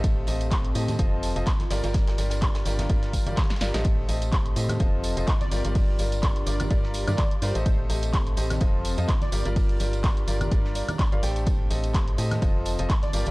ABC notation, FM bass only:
X:1
M:4/4
L:1/16
Q:"Swing 16ths" 1/4=126
K:Gm
V:1 name="FM bass" clef=bass
A,,,2 A,,,4 A,,2 F,,,3 F,,, z2 G,,, G,,,- | G,,,2 G,,,4 G,,,2 G,,,3 G,,, z2 G,,, A,,,- | A,,,2 A,,,4 A,,2 F,,,3 F,,, z2 G,,, G,,,- | G,,,2 G,,,4 G,,,2 G,,,3 G,, z2 G,, A,,,- |
A,,,2 A,,,4 A,,,2 F,,,3 F,, z2 G,,, G,,,- | G,,,2 G,,,4 G,,,2 G,,,3 z2 G,,, A,,,2- | A,,,2 A,,,4 A,,2 F,,,3 F,,, z2 G,,, G,,, |]